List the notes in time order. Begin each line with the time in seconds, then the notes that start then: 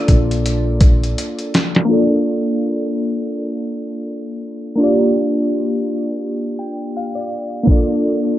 Already playing: A#3 D4 F4 A4 D5
0.08 A#1, kick, closed hi-hat
0.31 closed hi-hat
0.46 closed hi-hat
0.81 kick, closed hi-hat
1.04 closed hi-hat
1.18 closed hi-hat
1.39 closed hi-hat
1.54 snare, closed hi-hat
1.75 snare, closed hi-hat
1.85 A#3 D4 F4
1.91 A4 D5
4.75 A#3 D4 F4
4.82 G4 D5
6.59 G5
6.97 F5
7.15 D5
7.63 A#3 D4
7.67 F4 A4 D5, kick, closed hi-hat
7.90 closed hi-hat
8.04 closed hi-hat
8.24 closed hi-hat